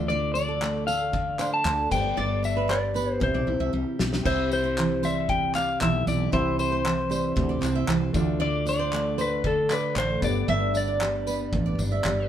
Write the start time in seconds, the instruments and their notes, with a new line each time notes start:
Already playing: fretless electric bass D2, felt piano A3 F4 D5
0.08 steel-string acoustic guitar D3, electric slide guitar D5, nylon-string guitar D5
0.34 steel-string acoustic guitar D4, electric slide guitar D5, tambourine
0.48 nylon-string guitar A4
0.61 steel-string acoustic guitar A3, clap
0.87 steel-string acoustic guitar A3, nylon-string guitar A4, electric slide guitar F5, tambourine
1.13 steel-string acoustic guitar D3, kick
1.39 steel-string acoustic guitar D4, nylon-string guitar C5, clap, tambourine
1.54 electric slide guitar A5
1.65 fretless electric bass D2, steel-string acoustic guitar A3, clap
1.90 fretless electric bass G1, steel-string acoustic guitar G2, felt piano B3 G4, electric slide guitar G5, kick, tambourine, crash
1.94 felt piano C5
2.00 felt piano D5
2.17 fretless electric bass G1, steel-string acoustic guitar G2, nylon-string guitar D5, electric slide guitar D5
2.43 steel-string acoustic guitar D4, electric slide guitar E5, tambourine
2.57 nylon-string guitar B4
2.68 steel-string acoustic guitar G3, electric slide guitar D5, clap
2.94 steel-string acoustic guitar B3, nylon-string guitar B4, tambourine
3.12 electric slide guitar C5
3.20 fretless electric bass C2, steel-string acoustic guitar C3, felt piano C4 G4, electric slide guitar C5, kick
3.24 felt piano E5
3.34 fretless electric bass B1, nylon-string guitar D5
3.47 fretless electric bass B1, steel-string acoustic guitar E4
3.60 fretless electric bass C2, nylon-string guitar E5
3.73 fretless electric bass C2, steel-string acoustic guitar G3
3.99 fretless electric bass B1, steel-string acoustic guitar G4, snare
4.13 snare
4.23 fretless electric bass C2, steel-string acoustic guitar C3, felt piano C4 E4 G4, electric slide guitar C5, nylon-string guitar E5, kick, crash
4.28 felt piano E5
4.51 steel-string acoustic guitar C4, electric slide guitar C5, tambourine
4.64 nylon-string guitar C5
4.78 steel-string acoustic guitar E3, clap
5.03 steel-string acoustic guitar G3, nylon-string guitar C5, electric slide guitar E5, tambourine
5.29 steel-string acoustic guitar C3, electric slide guitar G5, kick
5.55 steel-string acoustic guitar C4, nylon-string guitar D5, electric slide guitar F5, clap, tambourine
5.80 fretless electric bass B1, steel-string acoustic guitar E3, electric slide guitar E5, clap
6.07 fretless electric bass B1, steel-string acoustic guitar E4, electric slide guitar D5, tambourine
6.32 fretless electric bass C2, steel-string acoustic guitar C3, felt piano C4 E4 G4 G5, electric slide guitar C5, nylon-string guitar E5, kick
6.59 steel-string acoustic guitar C4, electric slide guitar C5, tambourine
6.72 nylon-string guitar C5
6.84 steel-string acoustic guitar E3, clap
7.10 steel-string acoustic guitar G3, nylon-string guitar C5, tambourine
7.36 fretless electric bass D2, steel-string acoustic guitar C3, kick
7.49 nylon-string guitar D5
7.61 fretless electric bass C2, steel-string acoustic guitar C4, clap, tambourine
7.75 nylon-string guitar E5
7.88 fretless electric bass C2, steel-string acoustic guitar E3, clap
8.13 fretless electric bass D2, steel-string acoustic guitar D3, felt piano A3 D4 F4, kick, tambourine
8.17 felt piano D5
8.40 steel-string acoustic guitar D3, nylon-string guitar D5, electric slide guitar D5
8.66 steel-string acoustic guitar D4, electric slide guitar D5, tambourine
8.79 nylon-string guitar C5
8.92 steel-string acoustic guitar A3, clap
9.18 steel-string acoustic guitar A3, electric slide guitar B4, nylon-string guitar C5, tambourine
9.44 steel-string acoustic guitar D3, electric slide guitar A4, kick
9.70 steel-string acoustic guitar D4, electric slide guitar B4, nylon-string guitar D5, clap, tambourine
9.96 fretless electric bass A1, steel-string acoustic guitar A3, electric slide guitar C5, clap
10.21 fretless electric bass G1, steel-string acoustic guitar G2, felt piano B3 D4 G4 C#5, electric slide guitar D5, kick, tambourine
10.31 felt piano D5
10.48 fretless electric bass G1, steel-string acoustic guitar G2, nylon-string guitar E5, electric slide guitar E5
10.74 steel-string acoustic guitar D4, electric slide guitar D5, tambourine
10.88 nylon-string guitar D5
11.01 steel-string acoustic guitar G3, clap
11.27 steel-string acoustic guitar B3, nylon-string guitar B4, tambourine
11.53 fretless electric bass A1, steel-string acoustic guitar G2, kick
11.66 nylon-string guitar D5
11.78 fretless electric bass G1, steel-string acoustic guitar D4, tambourine
11.92 nylon-string guitar E5
12.04 fretless electric bass G1, steel-string acoustic guitar G3, clap